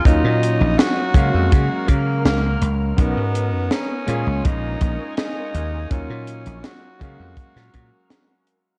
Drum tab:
HH |x-x-x-x-x-x-x-x-|x-x-x-x-x-x-x-x-|x-xxx-x-x-x-x-x-|
SD |----o-------o---|----o-------o---|----o----o--o---|
BD |o-----o-o-o-----|o-------o-o-----|o-----o-o-o-----|